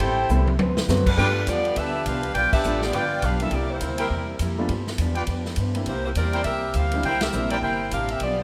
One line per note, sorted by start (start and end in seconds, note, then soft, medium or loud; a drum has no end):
0.00 0.29 A1 medium
0.00 0.19 A2 medium
0.00 0.20 G3 medium
0.00 0.31 C4 medium
0.00 0.20 C4 medium
0.00 0.31 E4 medium
0.00 0.32 E4 medium
0.00 0.20 E4 medium
0.00 0.31 G4 medium
0.00 0.31 A4 medium
0.00 0.31 C5 medium
0.00 0.31 G5 loud
0.00 kick soft
0.29 0.58 C2 loud
0.29 0.49 A2 medium
0.29 0.46 G3 medium
0.29 0.49 G3 medium
0.29 0.46 A3 medium
0.29 0.46 B3 medium
0.29 0.49 C4 medium
0.29 0.47 C4 medium
0.29 0.47 E4 medium
0.29 0.50 E4 medium
0.29 hi-hat pedal medium
0.47 high tom medium
0.59 0.88 D2 medium
0.59 0.78 D3 medium
0.59 0.79 C4 medium
0.59 0.79 F#4 medium
0.59 0.79 B4 medium
0.59 high tom loud
0.77 snare medium
0.88 1.17 F#2 loud
0.88 1.07 D3 medium
0.88 1.05 F#3 medium
0.88 1.05 A3 medium
0.88 1.05 B3 medium
0.88 1.08 C4 medium
0.88 1.05 C4 soft
0.88 1.05 F#4 medium
0.88 1.08 F#4 medium
0.88 1.08 B4 medium
0.88 snare medium
0.88 hi-hat pedal medium
1.06 1.45 G3 medium
1.06 1.45 D4 medium
1.06 1.45 F4 medium
1.06 1.45 B4 loud
1.06 kick medium
1.06 crash medium
1.17 1.36 G2 soft
1.17 1.46 G2 medium
1.17 1.37 F3 soft
1.17 1.98 G3 medium
1.17 1.46 G3 medium
1.17 1.99 A3 medium
1.17 1.99 B3 medium
1.17 1.37 B3 medium
1.17 1.99 D4 medium
1.17 1.46 D4 medium
1.17 1.38 D4 medium
1.17 1.30 F4 medium
1.17 1.99 F4 medium
1.17 1.46 F4 medium
1.17 1.29 B4 medium
1.17 1.46 B4 loud
1.17 1.29 D5 medium
1.17 1.30 G5 loud
1.47 1.76 E2 medium
1.47 1.66 G2 medium
1.47 1.67 F3 medium
1.47 1.77 B3 medium
1.47 1.67 B3 medium
1.47 1.67 D4 medium
1.47 1.77 F4 medium
1.47 1.77 G4 medium
1.47 1.77 D5 loud
1.47 kick soft
1.47 hi-hat pedal medium
1.47 ride medium
1.65 ride soft
1.76 2.05 D2 medium
1.76 1.95 G2 soft
1.76 1.96 F3 soft
1.76 1.96 B3 medium
1.76 2.06 D4 medium
1.76 1.96 D4 soft
1.76 2.05 G4 loud
1.76 2.06 B4 medium
1.76 2.06 E5 loud
1.76 kick soft
1.76 ride medium
2.06 2.34 C2 loud
2.06 2.25 G2 medium
2.06 2.25 F3 medium
2.06 2.26 B3 medium
2.06 2.36 D4 medium
2.06 2.26 D4 medium
2.06 2.35 G4 medium
2.06 2.34 B4 medium
2.06 2.36 F5 medium
2.06 kick soft
2.06 hi-hat pedal medium
2.06 ride medium
2.23 ride medium
2.35 2.52 B1 medium
2.35 2.54 G2 soft
2.35 2.54 F3 soft
2.35 2.55 B3 soft
2.35 2.55 D4 medium
2.35 2.51 F4 loud
2.35 2.52 B4 loud
2.35 2.51 D5 loud
2.35 2.51 G5 loud
2.35 kick soft
2.35 ride medium
2.53 2.80 D4 medium
2.53 2.80 G4 medium
2.53 2.80 B4 medium
2.53 2.80 E5 loud
2.53 muted upright bass stroke soft
2.53 kick medium
2.53 crash medium
2.64 2.93 A1 medium
2.64 2.83 G2 medium
2.64 2.83 F3 medium
2.64 2.81 G3 medium
2.64 2.81 A3 medium
2.64 2.81 B3 soft
2.64 2.84 B3 medium
2.64 2.84 D4 medium
2.64 2.81 D4 medium
2.64 2.81 F4 medium
2.64 hi-hat pedal medium
2.82 2.94 B3 medium
2.82 2.94 F4 medium
2.82 2.94 G4 medium
2.82 2.93 D5 medium
2.82 snare medium
2.93 3.22 G1 medium
2.93 3.12 G2 soft
2.93 3.13 F3 soft
2.93 3.13 B3 soft
2.93 3.14 D4 medium
2.93 3.05 F4 medium
2.93 3.24 F4 loud
2.93 3.05 B4 medium
2.93 3.22 B4 medium
2.93 3.05 D5 medium
2.93 3.24 D5 medium
2.93 3.05 G5 medium
2.93 3.23 G5 loud
2.93 kick soft
2.93 ride medium
3.22 3.51 B1 loud
3.22 3.42 G2 medium
3.22 3.42 F3 medium
3.22 3.43 B3 medium
3.22 3.41 D4 medium
3.22 3.43 D4 medium
3.22 3.41 G4 medium
3.22 3.41 B4 medium
3.22 3.41 F5 medium
3.22 kick soft
3.22 hi-hat pedal medium
3.22 ride medium
3.40 3.51 G3 medium
3.40 3.51 A#3 medium
3.40 3.52 C4 medium
3.40 3.53 C4 medium
3.40 3.52 D4 medium
3.40 3.52 E4 medium
3.40 3.52 F4 medium
3.40 3.53 A4 medium
3.40 3.53 E5 medium
3.40 ride medium
3.51 3.80 C2 medium
3.51 3.71 C3 soft
3.51 3.72 G3 soft
3.51 3.70 A#3 medium
3.51 3.72 A#3 medium
3.51 3.69 E4 medium
3.51 3.70 G4 medium
3.51 3.71 D5 loud
3.51 kick soft
3.51 ride medium
3.55 3.72 E4 medium
3.70 4.00 A#3 medium
3.70 3.99 E4 medium
3.70 4.00 G4 medium
3.70 4.00 C5 medium
3.81 4.10 D2 medium
3.81 4.00 C3 medium
3.81 4.01 G3 medium
3.81 4.01 A#3 medium
3.81 4.01 E4 medium
3.81 kick soft
3.81 hi-hat pedal medium
3.81 ride medium
3.98 4.38 G3 medium
3.98 4.38 C4 medium
3.98 4.06 E4 medium
3.98 4.38 E4 medium
3.98 4.06 A#4 medium
3.98 4.38 A#4 medium
3.98 4.06 C5 medium
3.98 4.07 G5 medium
3.98 ride medium
4.10 4.39 E2 medium
4.10 4.30 C3 soft
4.10 4.30 G3 medium
4.10 4.31 A#3 medium
4.10 4.31 E4 medium
4.10 kick soft
4.39 4.68 F2 medium
4.39 4.59 C3 medium
4.39 4.60 G3 medium
4.39 4.60 A#3 medium
4.39 4.60 E4 medium
4.39 kick soft
4.39 hi-hat pedal medium
4.39 ride medium
4.58 4.68 G3 medium
4.58 4.69 A3 medium
4.58 4.69 B3 medium
4.58 4.69 D4 medium
4.58 4.69 F4 medium
4.69 4.98 G2 medium
4.69 4.88 G2 soft
4.69 4.89 F3 medium
4.69 4.89 B3 medium
4.69 4.90 D4 medium
4.69 kick soft
4.69 ride medium
4.87 snare medium
4.98 5.27 E2 medium
4.98 5.18 G2 medium
4.98 5.18 F3 medium
4.98 5.19 B3 medium
4.98 5.19 D4 medium
4.98 kick soft
4.98 hi-hat pedal medium
4.98 ride medium
5.15 5.24 F4 medium
5.15 5.24 B4 medium
5.15 5.24 D5 medium
5.15 5.24 G5 loud
5.15 ride soft
5.27 5.56 F2 medium
5.27 5.47 G2 soft
5.27 5.48 F3 medium
5.27 5.48 B3 medium
5.27 kick soft
5.27 ride medium
5.31 5.48 D4 medium
5.45 snare soft
5.56 5.86 G2 medium
5.56 5.77 G2 medium
5.56 5.77 F3 medium
5.56 5.78 B3 medium
5.56 kick soft
5.56 hi-hat pedal medium
5.56 ride medium
5.60 5.78 D4 medium
5.75 5.86 G3 medium
5.75 5.86 A#3 medium
5.75 5.86 C4 medium
5.75 5.86 D4 medium
5.75 5.86 E4 medium
5.75 ride medium
5.86 6.15 C2 medium
5.86 6.06 C3 medium
5.86 6.07 G3 soft
5.86 6.04 A#3 medium
5.86 6.07 A#3 medium
5.86 6.04 E4 medium
5.86 6.04 G4 medium
5.86 6.04 C5 loud
5.86 kick soft
5.86 ride medium
5.90 6.07 E4 medium
6.06 6.11 A#3 medium
6.06 6.11 E4 medium
6.06 6.11 G4 medium
6.06 6.11 C5 medium
6.15 6.44 E2 medium
6.15 6.35 C3 medium
6.15 6.35 G3 medium
6.15 6.36 A#3 medium
6.15 6.44 C4 medium
6.15 6.36 E4 medium
6.15 6.44 G4 medium
6.15 6.44 A#4 medium
6.15 6.44 D5 medium
6.15 kick soft
6.15 hi-hat pedal medium
6.15 ride medium
6.33 6.42 E4 medium
6.33 6.42 A#4 medium
6.33 6.42 C5 medium
6.33 6.42 G5 medium
6.33 ride soft
6.44 6.74 C2 medium
6.44 6.64 C3 soft
6.44 6.65 G3 medium
6.44 6.65 A#3 medium
6.44 6.73 C4 medium
6.44 6.73 G4 medium
6.44 6.73 A#4 medium
6.44 6.72 E5 loud
6.44 kick soft
6.44 ride medium
6.48 6.66 E4 medium
6.74 7.03 D2 medium
6.74 6.94 C3 medium
6.74 6.94 G3 medium
6.74 6.94 A#3 medium
6.74 7.04 C4 medium
6.74 6.94 E4 medium
6.74 7.04 G4 medium
6.74 7.04 A#4 medium
6.74 7.04 F5 medium
6.74 kick soft
6.74 hi-hat pedal medium
6.74 ride medium
6.92 7.03 G3 medium
6.92 7.03 A#3 medium
6.92 7.03 C4 medium
6.92 7.04 D4 medium
6.92 7.04 E4 medium
6.92 ride medium
7.03 7.32 C2 medium
7.03 7.23 C3 soft
7.03 7.23 G3 soft
7.03 7.23 A#3 medium
7.03 7.22 E4 loud
7.03 7.24 E4 medium
7.03 7.21 A#4 loud
7.03 7.22 C5 loud
7.03 7.21 G5 loud
7.03 kick soft
7.03 ride medium
7.21 7.51 C4 medium
7.21 7.50 G4 medium
7.21 7.51 A#4 medium
7.21 7.51 E5 loud
7.21 snare medium
7.21 ride medium
7.32 7.62 A#1 medium
7.32 7.52 C3 medium
7.32 7.52 G3 medium
7.32 7.77 G3 medium
7.32 7.77 A#3 soft
7.32 7.52 A#3 medium
7.32 7.77 C4 soft
7.32 7.77 D4 soft
7.32 7.53 E4 medium
7.32 7.77 E4 medium
7.32 hi-hat pedal medium
7.50 7.57 A#3 medium
7.50 7.59 E4 medium
7.50 7.57 E4 medium
7.50 7.56 G4 medium
7.50 7.59 A#4 medium
7.50 7.59 C5 medium
7.50 7.57 D5 medium
7.50 7.59 G5 medium
7.50 ride medium
7.62 7.91 G1 medium
7.62 7.81 C3 soft
7.62 7.82 G3 soft
7.62 7.82 A#3 soft
7.62 7.90 E4 medium
7.62 7.82 E4 soft
7.62 7.90 A#4 medium
7.62 7.90 C5 medium
7.62 7.90 G5 loud
7.62 kick soft
7.91 8.20 A1 medium
7.91 8.11 C3 medium
7.91 8.11 G3 medium
7.91 8.11 A#3 medium
7.91 8.09 D4 medium
7.91 8.12 E4 medium
7.91 8.09 G4 medium
7.91 8.09 A#4 medium
7.91 8.09 F5 loud
7.91 kick soft
7.91 hi-hat pedal medium
7.91 ride medium
8.09 8.22 C4 medium
8.09 8.22 G4 medium
8.09 8.22 A#4 medium
8.09 8.22 E5 loud
8.09 ride medium
8.20 8.43 B1 medium
8.20 8.40 G2 soft
8.20 8.40 F3 soft
8.20 8.41 B3 medium
8.20 8.40 B3 medium
8.20 8.41 D4 medium
8.20 8.40 F4 medium
8.20 8.40 G4 medium
8.20 8.40 D5 loud
8.20 kick soft
8.20 ride medium